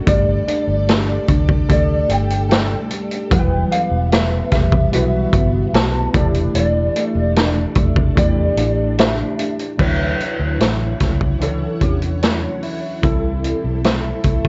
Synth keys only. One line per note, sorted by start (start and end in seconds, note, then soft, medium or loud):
0.06 1.15 A3 medium
0.06 1.16 D4 medium
0.06 1.16 G4 medium
0.06 1.16 D5 medium
1.69 2.77 A3 medium
1.69 2.78 D4 medium
1.69 2.78 G4 medium
1.69 2.79 D5 medium
3.30 4.39 E3 medium
3.30 4.40 F#3 medium
3.30 4.39 G3 medium
3.30 3.38 A#4 medium
3.39 4.44 B4 medium
4.92 6.01 G3 medium
4.92 6.02 E4 medium
4.92 6.02 F#4 medium
4.92 6.02 B4 medium
6.13 7.44 A3 medium
6.13 7.44 E4 medium
6.13 7.45 G4 medium
6.13 7.45 D5 medium
8.16 9.25 A3 medium
8.16 9.25 E4 medium
8.16 9.26 G4 medium
8.16 9.26 D5 medium
9.78 10.87 F#3 medium
9.78 10.88 D4 medium
9.78 10.88 E4 medium
9.78 10.89 C#5 medium
11.40 12.49 E3 medium
11.40 12.50 D4 medium
11.40 12.50 E4 medium
11.40 12.50 C#5 medium
13.02 14.11 G3 medium
13.02 14.12 C4 medium
13.02 14.12 E4 medium
13.02 14.13 A4 medium